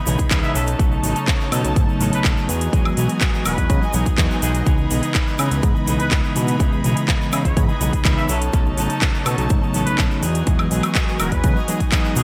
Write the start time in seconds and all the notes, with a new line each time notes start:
Already playing: E3 D#5 B5
0.06 B1 C#3 E3 G#3 B3 D#4 G#4, open hi-hat, shaker
0.18 C#2 B3 D#4 G#4, kick, closed hi-hat, shaker
0.30 C#2 E3 B3 D#4 G#4, kick, clap, closed hi-hat, shaker
0.43 E5, shaker
0.54 B1 F#3 C#4 D#4 A4 C#5 E5 A5, open hi-hat, shaker
0.67 closed hi-hat, shaker
0.78 B1 C#3 F#3 A3 B3 C#4 D#4 A4, kick, closed hi-hat, shaker
0.91 C#4 D#4 A4, shaker
1.03 A1 F#3 C#4 D#4 A4, open hi-hat, shaker
1.15 C#4 D#4 A4, closed hi-hat, shaker
1.27 F#3 C#4 D#4 A4, kick, clap, closed hi-hat, shaker
1.40 shaker
1.51 B2 F#3 C#4 D#4 A4, open hi-hat, high woodblock, shaker
1.65 B1, closed hi-hat, shaker
1.75 G#2 C#3 F#3 A3 B3 D#4, kick, closed hi-hat, shaker
1.88 C#4 D#4 A4, shaker
2.00 A1 F#3 C#4 D#4 A4, open hi-hat, shaker
2.12 B1 C#4 D#4 A4 B4, closed hi-hat, shaker
2.24 B1 F#3 C#4 D#4 A4, kick, clap, closed hi-hat, shaker
2.37 shaker
2.48 E2 F#3 B3 D#4 F#4 G#4 D#5 G#5, open hi-hat, shaker
2.61 closed hi-hat, shaker
2.72 E2 E3 F#3 G#3 B3 D#4 G#4, kick, closed hi-hat, shaker
2.84 B3 D#4 G#4, high woodblock, shaker
2.96 B1 F#3 B3 D#4 G#4, open hi-hat, shaker
3.09 B3 D#4 G#4, closed hi-hat, shaker
3.21 F#3 B3 D#4 G#4, kick, clap, closed hi-hat, shaker
3.34 shaker
3.45 E1 F#3 B3 D#4 G#4 B4, open hi-hat, high woodblock, shaker
3.58 E2, kick, closed hi-hat, shaker
3.70 C#3 E3 F#3 G#3 B3 D#4, kick, closed hi-hat, shaker
3.81 B3 D#4 G#4, shaker
3.93 B1 E3 F#3 G#3 B3 D#4 G#4, open hi-hat, shaker
4.05 E2 B3 D#4 G#4, kick, closed hi-hat, shaker
4.18 E2 F#3 B3 D#4 G#4, kick, clap, closed hi-hat, shaker
4.30 shaker
4.41 B1 F#3 B3 D#4 G#4, open hi-hat, shaker
4.55 closed hi-hat, shaker
4.65 C#2 C#3 E3 G#3 B3 D#4 G#4 B5, kick, closed hi-hat, shaker
4.78 B3 D#4 G#4, shaker
4.89 B1 E3 B3 D#4 G#4, open hi-hat, shaker
5.02 B3 D#4 G#4, closed hi-hat, shaker
5.14 E3 B3 D#4 G#4, kick, clap, closed hi-hat, shaker
5.27 shaker
5.38 C#3 E3 B3 D#4 G#4, open hi-hat, high woodblock, shaker
5.51 C#2, closed hi-hat, shaker
5.62 G#2 C#3 E3 G#3 B3 D#4, kick, closed hi-hat, shaker
5.74 B3 D#4 G#4, shaker
5.86 B1 E3 B3 D#4 G#4, open hi-hat, shaker
5.99 C#2 B3 D#4 G#4 B4, closed hi-hat, shaker
6.11 C#2 E3 B3 D#4 G#4, kick, clap, closed hi-hat, shaker
6.24 shaker
6.35 B2 E3 B3 D#4 G#4, open hi-hat, shaker
6.47 closed hi-hat, shaker
6.59 C#2 C#3 E3 G#3 B3 D#4 G#4, kick, closed hi-hat, shaker
6.71 B3 D#4 G#4, shaker
6.83 B1 E3 B3 D#4 G#4, open hi-hat, shaker
6.96 B3 D#4 G#4, closed hi-hat, shaker
7.08 E3 B3 D#4 G#4, kick, clap, closed hi-hat, shaker
7.21 shaker
7.32 C#3 E3 B3 D#4 G#4, open hi-hat, high woodblock, shaker
7.45 C#2 C#5, kick, closed hi-hat, shaker
7.57 G#2 C#3 E3 G#3 B3 D#4, kick, closed hi-hat, shaker
7.68 B3 D#4 G#4, shaker
7.80 B1 C#3 E3 G#3 B3 D#4 G#4, open hi-hat, shaker
7.93 C#2 B3 D#4 G#4, kick, closed hi-hat, shaker
8.05 C#2 E3 B3 D#4 G#4, kick, clap, closed hi-hat, shaker
8.17 E5, shaker
8.29 B1 F#3 C#4 D#4 A4 C#5 E5 A5, open hi-hat, shaker
8.42 closed hi-hat, shaker
8.53 B1 C#3 F#3 A3 B3 C#4 D#4 A4, kick, closed hi-hat, shaker
8.65 C#4 D#4 A4, shaker
8.77 A1 F#3 C#4 D#4 A4, open hi-hat, shaker
8.90 C#4 D#4 A4, closed hi-hat, shaker
9.01 F#3 C#4 D#4 A4, kick, clap, closed hi-hat, shaker
9.14 shaker
9.25 B2 F#3 C#4 D#4 A4, open hi-hat, high woodblock, shaker
9.38 B1, closed hi-hat, shaker
9.49 G#2 C#3 F#3 A3 B3 D#4, kick, closed hi-hat, shaker
9.62 C#4 D#4 A4, shaker
9.73 A1 F#3 C#4 D#4 A4, open hi-hat, shaker
9.86 B1 C#4 D#4 A4 B4, closed hi-hat, shaker
9.98 B1 F#3 C#4 D#4 A4, kick, clap, closed hi-hat, shaker
10.11 shaker
10.22 E2 F#3 B3 D#4 F#4 G#4 D#5 G#5, open hi-hat, shaker
10.35 closed hi-hat, shaker
10.46 E2 E3 F#3 G#3 B3 D#4 G#4, kick, closed hi-hat, shaker
10.59 B3 D#4 G#4, high woodblock, shaker
10.70 B1 F#3 B3 D#4 G#4, open hi-hat, shaker
10.83 B3 D#4 G#4, closed hi-hat, high woodblock, shaker
10.95 F#3 B3 D#4 G#4, kick, clap, closed hi-hat, shaker
11.08 shaker
11.19 E1 F#3 B3 D#4 G#4 B4, open hi-hat, high woodblock, shaker
11.32 E2, kick, closed hi-hat, shaker
11.43 C#3 E3 F#3 G#3 B3 D#4, kick, closed hi-hat, shaker
11.56 B3 D#4 G#4, shaker
11.67 E3 F#3 G#3 B3 D#4 G#4, open hi-hat, shaker
11.80 B3 D#4 G#4, kick, closed hi-hat, shaker
11.92 F#3 B3 D#4 G#4, kick, clap, closed hi-hat, shaker
12.05 shaker
12.16 B1 F#3 B3 D#4 G#4, open hi-hat, shaker